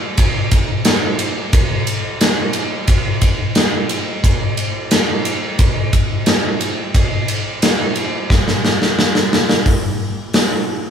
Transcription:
0.17 kick, ride
0.51 kick, ride
0.85 snare, ride
1.19 ride
1.53 kick, ride
1.87 ride
2.21 snare, ride
2.53 ride
2.88 kick, ride
3.21 kick, ride
3.55 snare, ride
3.89 ride
4.24 kick, ride
4.57 ride
4.91 snare, ride
5.25 ride
5.59 kick, ride
5.93 kick, ride
6.26 snare, ride
6.61 ride
6.94 kick, ride
7.28 ride
7.62 snare, ride
7.96 ride
8.30 kick, snare
8.48 snare
8.65 snare
8.82 snare
8.99 snare
9.15 snare
9.33 snare
9.49 snare
9.66 kick, open hi-hat
10.34 snare, open hi-hat

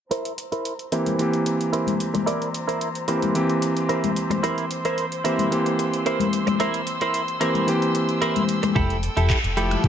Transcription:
0.11 E4 A#4 C5 A#5 E6, closed hi-hat
0.25 closed hi-hat
0.38 closed hi-hat
0.52 E4 A#4 C5, closed hi-hat
0.65 closed hi-hat
0.79 closed hi-hat
0.92 E3 A#3 C4 E4 G4 A#4 C5, closed hi-hat
1.06 closed hi-hat, high conga
1.18 E3 A#3 C4 G4, closed hi-hat
1.34 closed hi-hat
1.46 muted clean electric guitar stroke, closed hi-hat
1.61 closed hi-hat
1.73 E4 A#4 C5, closed hi-hat
1.87 closed hi-hat, high conga
2.00 closed hi-hat
2.14 muted clean electric guitar stroke, closed hi-hat, high conga
2.26 E4 A#4 D5, closed hi-hat
2.42 closed hi-hat
2.54 closed hi-hat
2.68 E4 A#4 C5, closed hi-hat
2.81 closed hi-hat
2.95 closed hi-hat
3.08 E3 A#3 C4 E4 G4 A#4 C5, closed hi-hat
3.22 closed hi-hat, high conga
3.34 E3 A#3 C4 G4, closed hi-hat
3.50 closed hi-hat
3.62 muted clean electric guitar stroke, closed hi-hat
3.77 closed hi-hat
3.89 E4 A#4 C5, closed hi-hat
4.04 closed hi-hat, high conga
4.16 closed hi-hat
4.30 muted clean electric guitar stroke, closed hi-hat, high conga
4.43 E4 A#4 C5 C6, closed hi-hat
4.58 closed hi-hat
4.71 closed hi-hat
4.85 E4 A#4 C5, closed hi-hat
4.98 closed hi-hat
5.12 closed hi-hat
5.24 E3 A#3 C4 E4 G4 A#4 C5, closed hi-hat
5.39 closed hi-hat, high conga
5.51 E3 A#3 C4 G4, closed hi-hat
5.66 closed hi-hat
5.79 muted clean electric guitar stroke, closed hi-hat
5.94 closed hi-hat
6.06 E4 A#4 C5, closed hi-hat
6.20 closed hi-hat, high conga
6.33 closed hi-hat
6.47 muted clean electric guitar stroke, closed hi-hat, high conga
6.60 E4 A#4 C5, closed hi-hat
6.74 closed hi-hat
6.87 closed hi-hat
7.01 E4 A#4 C5, closed hi-hat
7.14 closed hi-hat
7.28 closed hi-hat
7.41 E3 A#3 C4 E4 G4 A#4 C5, closed hi-hat
7.55 closed hi-hat, high conga
7.67 E3 A#3 C4 G4, closed hi-hat
7.82 closed hi-hat
7.95 muted clean electric guitar stroke, closed hi-hat
8.09 closed hi-hat
8.22 E4 A#4 C5, closed hi-hat
8.36 closed hi-hat, high conga
8.49 closed hi-hat
8.63 muted clean electric guitar stroke, closed hi-hat, high conga
8.75 F1 E4 G4 A4 G5, kick, closed hi-hat
8.90 closed hi-hat
9.03 closed hi-hat
9.17 F1 E4 G4 A4, closed hi-hat
9.30 finger snap, kick, clap, closed hi-hat
9.44 F1, closed hi-hat
9.57 F3 A3 E4 G4 A4, closed hi-hat
9.71 finger snap, closed hi-hat, high conga
9.83 C2 F3 A3 E4, kick, closed hi-hat

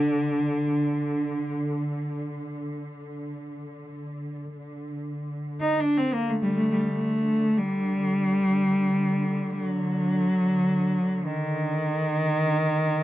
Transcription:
Already playing: D3
4.56 D3
5.61 D#4
5.81 D4
5.98 C4
6.13 A#3
6.29 A3
6.39 G3 A3
6.55 A3
6.71 G3
6.88 A3
7.58 G3
9.51 G3
9.64 F#3
11.26 D#3

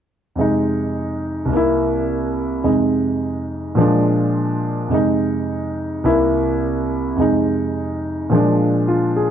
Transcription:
0.35 F2 C3 G#3
0.41 D#4
1.46 C2 C3
1.53 A#3 E4
2.64 F2 C3 G#3 D#4
3.75 A#2 F3 G#3
3.80 D4
4.89 F2 C3 G#3
4.94 D#4
6.04 C2 C3 A#3 E4
7.16 F2 C3 G#3
7.21 D#4
8.30 A#2 F3 G#3
8.35 D4
8.88 F4
9.16 G#4

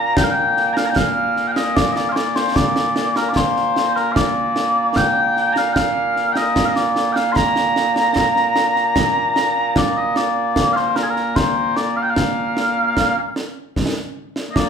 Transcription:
Already playing: A#2 A#3 A#5
0.17 G5, concert bass drum, snare
0.24 F5
0.31 G5
0.57 snare
0.73 F5 A#5, snare
0.86 A#5
0.90 G5
0.96 F5, concert bass drum, snare
1.36 snare
1.48 G5
1.52 F5
1.56 D#5, snare
1.76 D5, concert bass drum, snare
1.92 D#5
1.96 D5, snare
2.09 C5 F5
2.16 D5, snare
2.36 C5, snare
2.56 D5, concert bass drum, snare
2.76 snare
2.96 snare
3.16 A#4, snare
3.29 D5
3.36 C5, concert bass drum, snare
3.56 snare
3.76 snare
3.96 A#4, snare
4.12 F5
4.16 D5, concert bass drum, snare
4.56 snare
4.96 G5, concert bass drum, snare
5.37 snare
5.53 A#5, snare
5.57 F5
5.73 F5 G5, concert bass drum, snare
6.16 snare
6.33 D#5 G5, snare
6.56 concert bass drum, snare
6.65 D#5 F5
6.76 D5, snare
6.96 snare
7.12 F5 G5, snare
7.32 C6
7.36 A#5, concert bass drum, snare
7.56 snare
7.76 snare
7.96 snare
8.16 concert bass drum, snare
8.36 snare
8.56 snare
8.76 snare
8.96 concert bass drum, snare
9.36 snare
9.76 D5, concert bass drum, snare
9.97 D#5
10.16 D5, snare
10.56 concert bass drum, snare
10.73 C5 F5, snare
10.96 A#4, snare
11.03 G#4
11.10 A#4
11.16 snare
11.36 C5, concert bass drum, snare
11.76 D5, snare
11.96 F5
12.03 G5
12.10 F5
12.16 concert bass drum, snare
12.57 snare
12.97 concert bass drum, snare
13.36 snare
13.76 concert bass drum, snare
13.96 snare
14.36 snare
14.51 A#2 A#3 D#5
14.56 D5, concert bass drum, snare

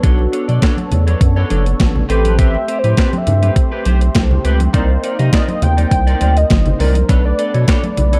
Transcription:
Already playing: B3 D4 A4 C#5
0.03 B1 D4 F#4 A4 C#5, kick, closed hi-hat, muted conga
0.19 muted conga
0.32 D4 A4 C#5, closed hi-hat
0.48 B2 D4 A4 D5, closed hi-hat, high conga
0.62 D4 A4 C#5, kick, snare, closed hi-hat
0.77 muted clean electric guitar stroke, closed hi-hat, high conga
0.91 E2, muted clean electric guitar stroke, closed hi-hat, low conga
1.07 D4 A4 C#5, closed hi-hat, high conga
1.21 F#2, muted clean electric guitar stroke, kick, closed hi-hat, muted conga
1.36 D4 A4 C#5, muted conga
1.50 F#1 D4 A4 C#5, closed hi-hat, high conga
1.66 muted clean electric guitar stroke, closed hi-hat
1.80 A1, muted clean electric guitar stroke, kick, snare, closed hi-hat, high conga
1.95 muted clean electric guitar stroke, muted conga, low conga
2.08 A1 A3 C4 G4 A4 B4 C5, closed hi-hat
2.24 C4 G4 B4, closed hi-hat, high conga
2.38 C4 G4 B4 E5, kick, closed hi-hat, muted conga
2.54 muted conga
2.68 C4 G4 C5, closed hi-hat
2.79 C5
2.84 A2 C4 G4 B4, closed hi-hat, high conga
2.97 C4 G4 B4, kick, snare, closed hi-hat
3.13 muted clean electric guitar stroke, closed hi-hat, muted conga, high conga
3.18 E5
3.27 G2, muted clean electric guitar stroke, closed hi-hat, low conga
3.42 C4 G4 B4, closed hi-hat, high conga
3.56 muted clean electric guitar stroke, kick, closed hi-hat, muted conga
3.72 C4 G4 B4
3.85 B1 C4 G4 C5, closed hi-hat, high conga
4.01 muted clean electric guitar stroke, closed hi-hat
4.15 C2, muted clean electric guitar stroke, kick, snare, closed hi-hat, muted conga, high conga
4.31 muted clean electric guitar stroke, muted conga, low conga
4.44 C#2 C4 G4 B4, closed hi-hat
4.60 muted clean electric guitar stroke, closed hi-hat, high conga
4.73 C2 A#3 C4 D#4 A#4 C5 D5, kick, closed hi-hat
5.03 D#4 A#4 D5, closed hi-hat
5.19 C3 D#4 A#4 D#5, closed hi-hat, high conga
5.33 D#4 A#4 D5 D#5, kick, snare, closed hi-hat
5.48 D#5, muted clean electric guitar stroke, closed hi-hat, muted conga, high conga
5.62 D#2 G5, muted clean electric guitar stroke, closed hi-hat, low conga
5.77 D#4 A#4 D5, closed hi-hat, high conga
5.91 C2 G5, muted clean electric guitar stroke, kick, closed hi-hat
6.07 D#4 A#4 D5, closed hi-hat
6.21 D2 D#4 A#4 D5, closed hi-hat, high conga
6.36 D#5, muted clean electric guitar stroke, closed hi-hat
6.50 G1, kick, snare, closed hi-hat, muted conga, high conga
6.65 muted clean electric guitar stroke, closed hi-hat, muted conga, low conga
6.79 C2 D#4 A#4 D5, open hi-hat, low conga
6.95 muted clean electric guitar stroke, closed hi-hat, high conga
7.08 B1 A3 B3 D4 A4 B4 C#5, kick, closed hi-hat
7.25 D5
7.38 D4 A4 D5, closed hi-hat
7.54 B2 D4 A4 C#5, closed hi-hat, high conga
7.68 D4 A4 C#5, kick, snare, closed hi-hat, muted conga
7.83 muted clean electric guitar stroke, closed hi-hat, high conga
7.97 B1, muted clean electric guitar stroke, closed hi-hat, low conga
8.13 D4 A4 C#5, closed hi-hat, high conga

